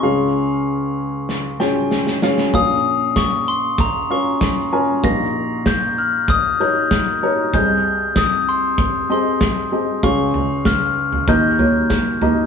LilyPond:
<<
  \new Staff \with { instrumentName = "Glockenspiel" } { \time 4/4 \key aes \major \tempo 4 = 96 des'''2~ des'''8 r4. | ees'''4 des'''8 c'''8 bes''8 des'''8 r4 | bes'''4 g'''8 f'''8 ees'''8 g'''8 r4 | g'''4 ees'''8 c'''4 c'''4 r8 |
des'''4 f'''4 g'''4. r8 | }
  \new Staff \with { instrumentName = "Upright piano" } { \time 4/4 \key aes \major <des' f' aes' f''>4. r4 <des' f' aes' g''>8. r16 <des' f' aes' f''>8 | <des' f' bes' f''>4. r4 <des' f' bes' f''>8. r16 <des' f' bes' aes''>8 | <ees' g' bes' f''>4. r4 <ees' g' bes' des''>8. r16 <ees' g' bes' des''>8 | <c' g' aes' ees''>4. r4 <c' g' aes' ees''>8. r16 <c' g' aes' ees''>8 |
<des' f' aes' f''>4. r8 <bes ees' g' ees''>8 <bes ees' g' des''>8. r16 <bes ees' g' ees''>8 | }
  \new Staff \with { instrumentName = "Upright piano" } { \clef bass \time 4/4 \key aes \major <des, des>1 | <bes,, bes,>1 | <bes,, bes,>1 | <c, c>1 |
<des, des>2 <ees, ees>2 | }
  \new DrumStaff \with { instrumentName = "Drums" } \drummode { \time 4/4 r4 r4 sn8 sn8 sn16 sn16 sn16 sn16 | bd4 <bd sn>4 bd4 <bd sn>4 | bd4 <bd sn>4 bd4 <bd sn>4 | bd4 <bd sn>4 bd4 <bd sn>4 |
bd8 tomfh8 <bd sn>8. tomfh16 bd8 tomfh8 <bd sn>8 tomfh8 | }
>>